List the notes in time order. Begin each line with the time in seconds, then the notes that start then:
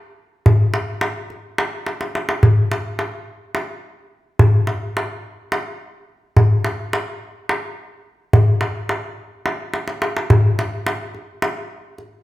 0.46 darbuka dum
0.74 darbuka tek
1.01 darbuka tek
1.30 darbuka ka
1.58 darbuka tek
1.87 darbuka tek
2.01 darbuka ka
2.15 darbuka tek
2.29 darbuka ka
2.43 darbuka dum
2.72 darbuka tek
2.99 darbuka tek
3.55 darbuka tek
4.39 darbuka dum
4.67 darbuka tek
4.97 darbuka tek
5.52 darbuka tek
6.37 darbuka dum
6.64 darbuka tek
6.93 darbuka tek
7.49 darbuka tek
8.33 darbuka dum
8.61 darbuka tek
8.89 darbuka tek
9.46 darbuka tek
9.74 darbuka tek
9.88 darbuka ka
10.02 darbuka tek
10.17 darbuka ka
10.30 darbuka dum
10.59 darbuka tek
10.87 darbuka tek
11.14 darbuka ka
11.42 darbuka tek
11.98 darbuka ka